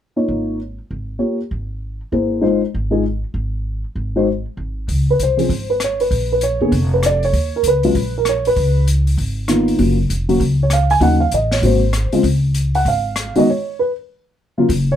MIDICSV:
0, 0, Header, 1, 5, 480
1, 0, Start_track
1, 0, Key_signature, -5, "major"
1, 0, Tempo, 306435
1, 1888, Time_signature, 4, 2, 24, 8
1, 23436, End_track
2, 0, Start_track
2, 0, Title_t, "Upright piano"
2, 0, Program_c, 0, 0
2, 255, Note_on_c, 0, 58, 43
2, 258, Note_on_c, 0, 63, 42
2, 261, Note_on_c, 0, 73, 49
2, 263, Note_on_c, 0, 65, 41
2, 884, Note_off_c, 0, 58, 0
2, 886, Note_off_c, 0, 63, 0
2, 887, Note_off_c, 0, 73, 0
2, 888, Note_off_c, 0, 65, 0
2, 1859, Note_on_c, 0, 58, 38
2, 1863, Note_on_c, 0, 65, 34
2, 1864, Note_on_c, 0, 73, 42
2, 1866, Note_on_c, 0, 67, 34
2, 2147, Note_off_c, 0, 58, 0
2, 2148, Note_off_c, 0, 65, 0
2, 2149, Note_off_c, 0, 73, 0
2, 2150, Note_off_c, 0, 67, 0
2, 3320, Note_on_c, 0, 64, 40
2, 3324, Note_on_c, 0, 58, 41
2, 3330, Note_on_c, 0, 68, 36
2, 3338, Note_on_c, 0, 72, 46
2, 3776, Note_off_c, 0, 72, 0
2, 3781, Note_on_c, 0, 63, 49
2, 3783, Note_on_c, 0, 56, 52
2, 3796, Note_on_c, 0, 65, 51
2, 3799, Note_on_c, 0, 72, 58
2, 3803, Note_off_c, 0, 64, 0
2, 3805, Note_off_c, 0, 58, 0
2, 3808, Note_off_c, 0, 68, 0
2, 4067, Note_off_c, 0, 63, 0
2, 4068, Note_off_c, 0, 56, 0
2, 4074, Note_off_c, 0, 65, 0
2, 4076, Note_off_c, 0, 72, 0
2, 4553, Note_on_c, 0, 56, 50
2, 4563, Note_on_c, 0, 63, 45
2, 4564, Note_on_c, 0, 65, 44
2, 4572, Note_on_c, 0, 68, 52
2, 4730, Note_off_c, 0, 56, 0
2, 4735, Note_off_c, 0, 63, 0
2, 4735, Note_off_c, 0, 65, 0
2, 4740, Note_off_c, 0, 68, 0
2, 6511, Note_on_c, 0, 56, 47
2, 6519, Note_on_c, 0, 66, 50
2, 6527, Note_on_c, 0, 63, 47
2, 6528, Note_on_c, 0, 72, 55
2, 6669, Note_off_c, 0, 56, 0
2, 6673, Note_off_c, 0, 66, 0
2, 6677, Note_off_c, 0, 63, 0
2, 6677, Note_off_c, 0, 72, 0
2, 7995, Note_on_c, 0, 71, 65
2, 8144, Note_off_c, 0, 71, 0
2, 8191, Note_on_c, 0, 72, 66
2, 8411, Note_on_c, 0, 53, 46
2, 8420, Note_on_c, 0, 60, 42
2, 8420, Note_on_c, 0, 61, 43
2, 8431, Note_on_c, 0, 68, 48
2, 8579, Note_off_c, 0, 53, 0
2, 8583, Note_off_c, 0, 60, 0
2, 8583, Note_off_c, 0, 61, 0
2, 8589, Note_off_c, 0, 68, 0
2, 8889, Note_off_c, 0, 72, 0
2, 8926, Note_on_c, 0, 71, 58
2, 9089, Note_off_c, 0, 71, 0
2, 9147, Note_on_c, 0, 73, 71
2, 9408, Note_on_c, 0, 71, 62
2, 9412, Note_off_c, 0, 73, 0
2, 9881, Note_off_c, 0, 71, 0
2, 9905, Note_on_c, 0, 71, 61
2, 10059, Note_off_c, 0, 71, 0
2, 10074, Note_on_c, 0, 73, 67
2, 10352, Note_on_c, 0, 50, 48
2, 10358, Note_on_c, 0, 58, 43
2, 10362, Note_on_c, 0, 68, 57
2, 10371, Note_on_c, 0, 59, 45
2, 10510, Note_off_c, 0, 50, 0
2, 10513, Note_off_c, 0, 58, 0
2, 10515, Note_off_c, 0, 68, 0
2, 10519, Note_off_c, 0, 59, 0
2, 10790, Note_off_c, 0, 73, 0
2, 10863, Note_on_c, 0, 71, 58
2, 11018, Note_off_c, 0, 71, 0
2, 11058, Note_on_c, 0, 74, 74
2, 11327, Note_off_c, 0, 74, 0
2, 11347, Note_on_c, 0, 73, 69
2, 11844, Note_on_c, 0, 70, 61
2, 11940, Note_off_c, 0, 73, 0
2, 11989, Note_off_c, 0, 70, 0
2, 12023, Note_on_c, 0, 71, 73
2, 12277, Note_on_c, 0, 49, 53
2, 12287, Note_on_c, 0, 54, 52
2, 12288, Note_on_c, 0, 56, 50
2, 12290, Note_on_c, 0, 65, 60
2, 12432, Note_off_c, 0, 49, 0
2, 12437, Note_off_c, 0, 54, 0
2, 12438, Note_off_c, 0, 56, 0
2, 12438, Note_off_c, 0, 65, 0
2, 12725, Note_off_c, 0, 71, 0
2, 12808, Note_on_c, 0, 70, 57
2, 12951, Note_off_c, 0, 70, 0
2, 12984, Note_on_c, 0, 73, 71
2, 13251, Note_off_c, 0, 73, 0
2, 13270, Note_on_c, 0, 71, 75
2, 13862, Note_off_c, 0, 71, 0
2, 14849, Note_on_c, 0, 51, 54
2, 14852, Note_on_c, 0, 58, 53
2, 14859, Note_on_c, 0, 59, 53
2, 14859, Note_on_c, 0, 65, 58
2, 15311, Note_off_c, 0, 58, 0
2, 15313, Note_off_c, 0, 65, 0
2, 15328, Note_off_c, 0, 51, 0
2, 15328, Note_on_c, 0, 54, 43
2, 15332, Note_on_c, 0, 49, 45
2, 15333, Note_off_c, 0, 59, 0
2, 15335, Note_on_c, 0, 58, 39
2, 15336, Note_on_c, 0, 65, 46
2, 15601, Note_off_c, 0, 54, 0
2, 15603, Note_off_c, 0, 49, 0
2, 15604, Note_off_c, 0, 58, 0
2, 15605, Note_off_c, 0, 65, 0
2, 16114, Note_on_c, 0, 54, 52
2, 16122, Note_on_c, 0, 49, 55
2, 16124, Note_on_c, 0, 66, 56
2, 16130, Note_on_c, 0, 58, 50
2, 16271, Note_off_c, 0, 54, 0
2, 16275, Note_off_c, 0, 49, 0
2, 16276, Note_off_c, 0, 66, 0
2, 16279, Note_off_c, 0, 58, 0
2, 16649, Note_on_c, 0, 73, 62
2, 16792, Note_off_c, 0, 73, 0
2, 16809, Note_on_c, 0, 77, 68
2, 17083, Note_off_c, 0, 77, 0
2, 17085, Note_on_c, 0, 80, 86
2, 17231, Note_on_c, 0, 49, 56
2, 17236, Note_on_c, 0, 58, 49
2, 17243, Note_on_c, 0, 54, 47
2, 17249, Note_on_c, 0, 63, 58
2, 17250, Note_off_c, 0, 80, 0
2, 17272, Note_on_c, 0, 78, 72
2, 17513, Note_off_c, 0, 49, 0
2, 17515, Note_off_c, 0, 58, 0
2, 17519, Note_off_c, 0, 54, 0
2, 17522, Note_off_c, 0, 63, 0
2, 17549, Note_on_c, 0, 77, 65
2, 17555, Note_off_c, 0, 78, 0
2, 17721, Note_off_c, 0, 77, 0
2, 17767, Note_on_c, 0, 75, 65
2, 18043, Note_off_c, 0, 75, 0
2, 18056, Note_on_c, 0, 73, 65
2, 18215, Note_off_c, 0, 73, 0
2, 18217, Note_on_c, 0, 48, 44
2, 18218, Note_on_c, 0, 66, 47
2, 18219, Note_on_c, 0, 56, 41
2, 18230, Note_on_c, 0, 58, 41
2, 18245, Note_on_c, 0, 72, 62
2, 18486, Note_off_c, 0, 48, 0
2, 18487, Note_off_c, 0, 56, 0
2, 18487, Note_off_c, 0, 66, 0
2, 18492, Note_off_c, 0, 58, 0
2, 18995, Note_on_c, 0, 56, 57
2, 18998, Note_on_c, 0, 60, 55
2, 18999, Note_on_c, 0, 49, 58
2, 19008, Note_on_c, 0, 65, 64
2, 19125, Note_off_c, 0, 72, 0
2, 19152, Note_off_c, 0, 56, 0
2, 19154, Note_off_c, 0, 49, 0
2, 19154, Note_off_c, 0, 60, 0
2, 19159, Note_off_c, 0, 65, 0
2, 19977, Note_on_c, 0, 78, 69
2, 20137, Note_off_c, 0, 78, 0
2, 20176, Note_on_c, 0, 77, 68
2, 20884, Note_off_c, 0, 77, 0
2, 20920, Note_on_c, 0, 51, 59
2, 20921, Note_on_c, 0, 59, 55
2, 20924, Note_on_c, 0, 56, 55
2, 20925, Note_on_c, 0, 66, 64
2, 20960, Note_on_c, 0, 75, 70
2, 21076, Note_off_c, 0, 51, 0
2, 21077, Note_off_c, 0, 59, 0
2, 21078, Note_off_c, 0, 56, 0
2, 21078, Note_off_c, 0, 66, 0
2, 21109, Note_off_c, 0, 75, 0
2, 21143, Note_on_c, 0, 73, 60
2, 21565, Note_off_c, 0, 73, 0
2, 21607, Note_on_c, 0, 71, 66
2, 21778, Note_off_c, 0, 71, 0
2, 22832, Note_on_c, 0, 49, 54
2, 22835, Note_on_c, 0, 54, 48
2, 22836, Note_on_c, 0, 65, 64
2, 22844, Note_on_c, 0, 58, 50
2, 22992, Note_off_c, 0, 49, 0
2, 22994, Note_off_c, 0, 54, 0
2, 22994, Note_off_c, 0, 65, 0
2, 22998, Note_off_c, 0, 58, 0
2, 23366, Note_on_c, 0, 73, 77
2, 23436, Note_off_c, 0, 73, 0
2, 23436, End_track
3, 0, Start_track
3, 0, Title_t, "Upright bass"
3, 0, Program_c, 1, 32
3, 444, Note_on_c, 1, 32, 59
3, 1207, Note_off_c, 1, 32, 0
3, 1419, Note_on_c, 1, 32, 58
3, 1860, Note_off_c, 1, 32, 0
3, 2367, Note_on_c, 1, 32, 63
3, 3128, Note_off_c, 1, 32, 0
3, 3325, Note_on_c, 1, 32, 62
3, 4087, Note_off_c, 1, 32, 0
3, 4299, Note_on_c, 1, 32, 61
3, 5055, Note_off_c, 1, 32, 0
3, 5230, Note_on_c, 1, 32, 62
3, 5999, Note_off_c, 1, 32, 0
3, 6195, Note_on_c, 1, 32, 64
3, 6962, Note_off_c, 1, 32, 0
3, 7160, Note_on_c, 1, 32, 60
3, 7609, Note_off_c, 1, 32, 0
3, 7651, Note_on_c, 1, 37, 67
3, 8095, Note_off_c, 1, 37, 0
3, 8133, Note_on_c, 1, 36, 57
3, 8576, Note_off_c, 1, 36, 0
3, 8605, Note_on_c, 1, 32, 69
3, 9517, Note_off_c, 1, 32, 0
3, 9566, Note_on_c, 1, 34, 74
3, 10295, Note_off_c, 1, 34, 0
3, 10345, Note_on_c, 1, 32, 54
3, 10511, Note_off_c, 1, 32, 0
3, 10522, Note_on_c, 1, 29, 74
3, 11436, Note_off_c, 1, 29, 0
3, 11487, Note_on_c, 1, 39, 72
3, 11933, Note_off_c, 1, 39, 0
3, 11955, Note_on_c, 1, 37, 64
3, 12407, Note_off_c, 1, 37, 0
3, 12453, Note_on_c, 1, 34, 71
3, 13362, Note_off_c, 1, 34, 0
3, 13417, Note_on_c, 1, 37, 72
3, 14324, Note_off_c, 1, 37, 0
3, 14370, Note_on_c, 1, 32, 73
3, 15280, Note_off_c, 1, 32, 0
3, 15328, Note_on_c, 1, 30, 72
3, 15774, Note_off_c, 1, 30, 0
3, 15815, Note_on_c, 1, 29, 65
3, 16258, Note_off_c, 1, 29, 0
3, 16286, Note_on_c, 1, 37, 72
3, 17199, Note_off_c, 1, 37, 0
3, 17236, Note_on_c, 1, 39, 72
3, 17688, Note_off_c, 1, 39, 0
3, 17737, Note_on_c, 1, 33, 64
3, 18179, Note_off_c, 1, 33, 0
3, 18205, Note_on_c, 1, 32, 74
3, 18936, Note_off_c, 1, 32, 0
3, 19158, Note_on_c, 1, 37, 72
3, 20076, Note_off_c, 1, 37, 0
3, 20130, Note_on_c, 1, 32, 73
3, 20859, Note_off_c, 1, 32, 0
3, 23006, Note_on_c, 1, 30, 74
3, 23436, Note_off_c, 1, 30, 0
3, 23436, End_track
4, 0, Start_track
4, 0, Title_t, "Muted upright bass strokes"
4, 18990, Note_on_c, 9, 29, 33
4, 19147, Note_off_c, 9, 29, 0
4, 20932, Note_on_c, 9, 29, 33
4, 21089, Note_off_c, 9, 29, 0
4, 23436, End_track
5, 0, Start_track
5, 0, Title_t, "Drums"
5, 7645, Note_on_c, 9, 36, 27
5, 7653, Note_on_c, 9, 46, 33
5, 7802, Note_off_c, 9, 36, 0
5, 7810, Note_off_c, 9, 46, 0
5, 8135, Note_on_c, 9, 42, 41
5, 8292, Note_off_c, 9, 42, 0
5, 8440, Note_on_c, 9, 46, 31
5, 8596, Note_off_c, 9, 46, 0
5, 8605, Note_on_c, 9, 36, 27
5, 8616, Note_on_c, 9, 46, 32
5, 8761, Note_off_c, 9, 36, 0
5, 8772, Note_off_c, 9, 46, 0
5, 9086, Note_on_c, 9, 37, 46
5, 9089, Note_on_c, 9, 42, 39
5, 9242, Note_off_c, 9, 37, 0
5, 9245, Note_off_c, 9, 42, 0
5, 9398, Note_on_c, 9, 46, 27
5, 9555, Note_off_c, 9, 46, 0
5, 9565, Note_on_c, 9, 36, 26
5, 9577, Note_on_c, 9, 46, 37
5, 9722, Note_off_c, 9, 36, 0
5, 9734, Note_off_c, 9, 46, 0
5, 10041, Note_on_c, 9, 42, 43
5, 10198, Note_off_c, 9, 42, 0
5, 10525, Note_on_c, 9, 36, 26
5, 10529, Note_on_c, 9, 46, 34
5, 10682, Note_off_c, 9, 36, 0
5, 10686, Note_off_c, 9, 46, 0
5, 11006, Note_on_c, 9, 37, 50
5, 11009, Note_on_c, 9, 42, 40
5, 11163, Note_off_c, 9, 37, 0
5, 11166, Note_off_c, 9, 42, 0
5, 11321, Note_on_c, 9, 46, 26
5, 11478, Note_off_c, 9, 46, 0
5, 11485, Note_on_c, 9, 36, 28
5, 11488, Note_on_c, 9, 46, 35
5, 11642, Note_off_c, 9, 36, 0
5, 11644, Note_off_c, 9, 46, 0
5, 11961, Note_on_c, 9, 42, 44
5, 12118, Note_off_c, 9, 42, 0
5, 12269, Note_on_c, 9, 46, 30
5, 12425, Note_off_c, 9, 46, 0
5, 12448, Note_on_c, 9, 36, 26
5, 12451, Note_on_c, 9, 46, 34
5, 12604, Note_off_c, 9, 36, 0
5, 12607, Note_off_c, 9, 46, 0
5, 12926, Note_on_c, 9, 37, 51
5, 12929, Note_on_c, 9, 42, 38
5, 13083, Note_off_c, 9, 37, 0
5, 13086, Note_off_c, 9, 42, 0
5, 13237, Note_on_c, 9, 46, 27
5, 13394, Note_off_c, 9, 46, 0
5, 13412, Note_on_c, 9, 36, 27
5, 13412, Note_on_c, 9, 46, 35
5, 13569, Note_off_c, 9, 36, 0
5, 13569, Note_off_c, 9, 46, 0
5, 13901, Note_on_c, 9, 42, 42
5, 14058, Note_off_c, 9, 42, 0
5, 14209, Note_on_c, 9, 46, 29
5, 14365, Note_off_c, 9, 46, 0
5, 14378, Note_on_c, 9, 36, 26
5, 14385, Note_on_c, 9, 46, 35
5, 14535, Note_off_c, 9, 36, 0
5, 14541, Note_off_c, 9, 46, 0
5, 14850, Note_on_c, 9, 37, 48
5, 14853, Note_on_c, 9, 42, 38
5, 15007, Note_off_c, 9, 37, 0
5, 15010, Note_off_c, 9, 42, 0
5, 15161, Note_on_c, 9, 46, 28
5, 15318, Note_off_c, 9, 46, 0
5, 15330, Note_on_c, 9, 46, 36
5, 15332, Note_on_c, 9, 36, 26
5, 15487, Note_off_c, 9, 46, 0
5, 15488, Note_off_c, 9, 36, 0
5, 15821, Note_on_c, 9, 42, 40
5, 15978, Note_off_c, 9, 42, 0
5, 16120, Note_on_c, 9, 46, 30
5, 16277, Note_off_c, 9, 46, 0
5, 16290, Note_on_c, 9, 36, 26
5, 16299, Note_on_c, 9, 46, 32
5, 16447, Note_off_c, 9, 36, 0
5, 16456, Note_off_c, 9, 46, 0
5, 16762, Note_on_c, 9, 37, 49
5, 16765, Note_on_c, 9, 42, 44
5, 16918, Note_off_c, 9, 37, 0
5, 16921, Note_off_c, 9, 42, 0
5, 17075, Note_on_c, 9, 46, 29
5, 17231, Note_off_c, 9, 46, 0
5, 17242, Note_on_c, 9, 36, 27
5, 17249, Note_on_c, 9, 46, 36
5, 17398, Note_off_c, 9, 36, 0
5, 17406, Note_off_c, 9, 46, 0
5, 17724, Note_on_c, 9, 42, 41
5, 17880, Note_off_c, 9, 42, 0
5, 18037, Note_on_c, 9, 38, 27
5, 18040, Note_on_c, 9, 46, 30
5, 18194, Note_off_c, 9, 38, 0
5, 18197, Note_off_c, 9, 46, 0
5, 18204, Note_on_c, 9, 36, 28
5, 18213, Note_on_c, 9, 46, 35
5, 18361, Note_off_c, 9, 36, 0
5, 18369, Note_off_c, 9, 46, 0
5, 18688, Note_on_c, 9, 37, 50
5, 18691, Note_on_c, 9, 42, 40
5, 18844, Note_off_c, 9, 37, 0
5, 18848, Note_off_c, 9, 42, 0
5, 18992, Note_on_c, 9, 46, 30
5, 19148, Note_off_c, 9, 46, 0
5, 19165, Note_on_c, 9, 36, 27
5, 19172, Note_on_c, 9, 46, 38
5, 19322, Note_off_c, 9, 36, 0
5, 19329, Note_off_c, 9, 46, 0
5, 19651, Note_on_c, 9, 42, 42
5, 19807, Note_off_c, 9, 42, 0
5, 19967, Note_on_c, 9, 46, 29
5, 20123, Note_off_c, 9, 46, 0
5, 20136, Note_on_c, 9, 36, 28
5, 20141, Note_on_c, 9, 46, 34
5, 20293, Note_off_c, 9, 36, 0
5, 20298, Note_off_c, 9, 46, 0
5, 20611, Note_on_c, 9, 37, 52
5, 20614, Note_on_c, 9, 42, 40
5, 20768, Note_off_c, 9, 37, 0
5, 20771, Note_off_c, 9, 42, 0
5, 20921, Note_on_c, 9, 46, 28
5, 21077, Note_off_c, 9, 46, 0
5, 23013, Note_on_c, 9, 36, 30
5, 23021, Note_on_c, 9, 46, 42
5, 23169, Note_off_c, 9, 36, 0
5, 23178, Note_off_c, 9, 46, 0
5, 23436, End_track
0, 0, End_of_file